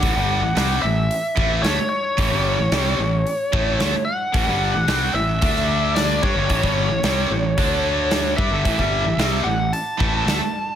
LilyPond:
<<
  \new Staff \with { instrumentName = "Lead electric guitar" } { \time 4/4 \key d \major \tempo 4 = 111 fis''4. e''4. cis''8 cis''8~ | cis''2.~ cis''8 fis''8~ | fis''4. e''4. d''8 cis''8~ | cis''2.~ cis''8 e''8~ |
e''4. fis''8 a''4 a''4 | }
  \new Staff \with { instrumentName = "Distorted electric guitar" } { \clef bass \time 4/4 \key d \major <a, e>16 <g, d g>8 <a, e>16 <c g c'>8 <a, e>8 r8 <a, e a>8 <d a>16 r8. | <a, e>16 <g, d g>8 <a, e>16 <c g c'>8 <a, e>8 r8 <a, e a>8 <d a>16 r8. | <a, e>16 <g, d g>8 <a, e>16 <c g c'>8 <a, e>8 <d a d'>4. <g d'>16 <g, d>16 | <a, e>16 <g, d g>8 <a, e>16 <c g c'>8 <a, e>8 <d a d'>4. <g d'>16 <g, d>16 |
<a, e>16 <g, d g>8 <a, e>16 <c g c'>8 <a, e>8 r8 <a, e a>8 <d a>16 r8. | }
  \new Staff \with { instrumentName = "Overdriven electric guitar" } { \clef bass \time 4/4 \key d \major <a, e>16 <g, d g>8 <a, e>16 <c g c'>8 <a, e>8 r8 <a, e a>8 <d a>16 r8. | <a, e>16 <g, d g>8 <a, e>16 <c g c'>8 <a, e>8 r8 <a, e a>8 <d a>16 r8. | <a, e>16 <g, d g>8 <a, e>16 <c g c'>8 <a, e>8 <d a d'>4. <g d'>16 <g, d>16 | <a, e>16 <g, d g>8 <a, e>16 <c g c'>8 <a, e>8 <d a d'>4. <g d'>16 <g, d>16 |
<a, e>16 <g, d g>8 <a, e>16 <c g c'>8 <a, e>8 r8 <a, e a>8 <d a>16 r8. | }
  \new Staff \with { instrumentName = "Fingered electric bass" } { \clef bass \time 4/4 \key d \major a,,16 g,,8 a,,16 c,8 a,,8 r8 a,,8 d,16 r8. | a,,16 g,,8 a,,16 c,8 a,,8 r8 a,,8 d,16 r8. | a,,16 g,,8 a,,16 c,8 a,,8 d,4. g,16 g,,16 | a,,16 g,,8 a,,16 c,8 a,,8 d,4. g,16 g,,16 |
a,,16 g,,8 a,,16 c,8 a,,8 r8 a,,8 d,16 r8. | }
  \new DrumStaff \with { instrumentName = "Drums" } \drummode { \time 4/4 <hho bd>4 <hho sn>4 hho8 bd8 <hho sn>4 | <hho bd>4 <hho sn>4 hho8 bd8 <hho sn>4 | <hho bd>4 <hho sn>4 <hho bd>16 sn8. <hho sn>8 bd8 | <hho bd>16 bd8. <hho sn>4 <hho bd>4 <hho sn>8 bd8 |
<hho bd>16 bd8. <hho sn>4 hho8 bd8 <hho sn>4 | }
>>